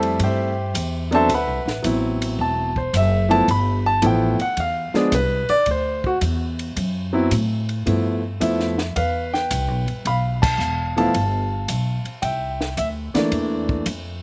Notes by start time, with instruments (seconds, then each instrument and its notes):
Already playing: upright bass F2, grand piano G3 A3 C4 E4 A4 C5 E5 A5
0.03 ride
0.20 upright bass G2, grand piano G5, kick, ride
0.24 grand piano G4 C5 E5
0.74 upright bass E2, kick, hi-hat pedal, ride
1.11 grand piano F#3 B3 C4 D4 A4 C5 E5 A5, ride
1.29 upright bass D2, kick, ride
1.34 grand piano B4 E5 F#5 B5
1.47 upright bass C2
1.65 upright bass A1, snare
1.83 upright bass A1, grand piano F#3 B3 C4 E4, kick, hi-hat pedal, ride
2.22 ride
2.39 upright bass E1, grand piano A5, kick
2.76 grand piano C5, kick
2.93 upright bass F#1, grand piano E5, kick, hi-hat pedal, ride
3.29 grand piano F3 A3 B3 E4 A5, ride
3.48 upright bass G1, grand piano B5, kick, ride
3.86 grand piano A5
4.02 upright bass A1, grand piano F3 A3 B3 E4, kick, hi-hat pedal, ride
4.06 grand piano G5
4.39 grand piano F#5, muted upright bass stroke, ride
4.57 upright bass E2, grand piano F5, kick, ride
4.94 grand piano F3 G#3 B3 D4 G#4, muted upright bass stroke, snare
5.12 upright bass C2, grand piano B4, kick, hi-hat pedal, ride
5.49 grand piano D5, muted upright bass stroke, ride
5.66 upright bass D2, kick, ride
5.71 grand piano C5
6.04 grand piano F#4, kick
6.21 upright bass E2, kick, hi-hat pedal, ride
6.59 ride
6.76 upright bass F#2, kick, ride
7.13 grand piano F#3 B3 C4 E4
7.31 upright bass A2, kick, hi-hat pedal, ride
7.69 ride
7.86 upright bass G2, grand piano F3 A3 B3 E4, kick, ride
8.40 upright bass F2, grand piano F3 A3 B3 E4 E5, kick, hi-hat pedal, ride
8.60 snare
8.78 snare
8.96 upright bass E2, grand piano B4 F5, kick, ride
9.34 grand piano G5, snare
9.51 upright bass C2, kick, hi-hat pedal, ride
9.68 upright bass B1
9.86 upright bass G1, ride
10.05 upright bass B1, grand piano F5 B5, kick, ride
10.42 grand piano A5, kick, crash
10.58 upright bass E1, hi-hat pedal
10.97 grand piano F3 A3 B3 E4 F5 A5, ride
11.14 upright bass G1, kick, ride
11.68 upright bass B1, kick, hi-hat pedal, ride
12.04 muted upright bass stroke, ride
12.22 upright bass C2, grand piano E5 G5, kick, ride
12.61 snare
12.77 upright bass D2, grand piano E5, kick, hi-hat pedal, ride
13.14 grand piano E3 A3 A#3 D4 D5, muted upright bass stroke, snare, ride
13.31 upright bass E2, kick, ride
13.69 kick
13.86 upright bass F2, kick, hi-hat pedal, ride